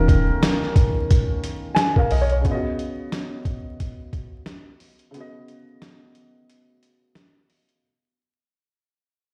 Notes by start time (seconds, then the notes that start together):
Already playing: D#1 D#3 C#4 F4 A#4
0.08 kick, closed hi-hat
0.43 snare, closed hi-hat
0.62 snare
0.76 kick, closed hi-hat
1.10 kick, closed hi-hat
1.44 closed hi-hat
1.75 G#5, snare, closed hi-hat
1.96 A#4 F5, kick
2.11 B1 D#5, open hi-hat
2.21 C#5
2.30 C#5, closed hi-hat
2.41 C#3 B3, kick, closed hi-hat
2.48 F4 D#5
2.54 F#4
2.79 closed hi-hat
3.12 snare, closed hi-hat
3.45 kick, closed hi-hat
3.80 kick, closed hi-hat
4.13 kick, closed hi-hat
4.46 snare, closed hi-hat
4.80 open hi-hat
4.99 closed hi-hat
5.11 C#3 B3, closed hi-hat
5.17 F#4 D#5
5.48 closed hi-hat
5.82 snare, closed hi-hat
6.15 closed hi-hat
6.49 closed hi-hat
6.83 closed hi-hat
7.15 snare, closed hi-hat
7.50 open hi-hat
7.69 closed hi-hat